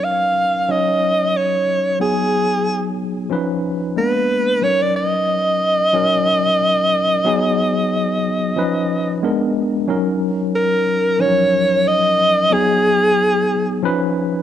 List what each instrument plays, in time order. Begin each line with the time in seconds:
Already playing: tine electric piano F#3 C#4 D#4 A#4
0.04 alto saxophone F5
0.68 tine electric piano F#3 C#4 D#4 C#5, alto saxophone D#5
1.37 alto saxophone C#5
1.99 tine electric piano F#3 B3 D#4 G#4, alto saxophone G#4
3.30 tine electric piano F3 C#4 D#4 B4
3.96 tine electric piano G#3 A#3 B3 D4, alto saxophone B4
4.62 tine electric piano F#3 C#4 D#4 A#4, alto saxophone C#5
4.82 alto saxophone D5
4.96 alto saxophone D#5
5.93 tine electric piano F#3 C#4 D#4 A#4
7.25 tine electric piano F#3 B3 D#4 G#4
8.56 tine electric piano F3 C#4 D#4 B4
9.23 tine electric piano G#3 B3 D4 A#4
9.88 tine electric piano F#3 C#4 D#4 A#4
10.55 alto saxophone A#4
11.19 tine electric piano F3 C#4 D#4 A#4, alto saxophone C#5
11.26 tine electric piano F#3
11.88 alto saxophone D#5
12.50 tine electric piano F#3 B3 D#4 G#4, alto saxophone G#4
13.82 tine electric piano F3 C#4 D#4 B4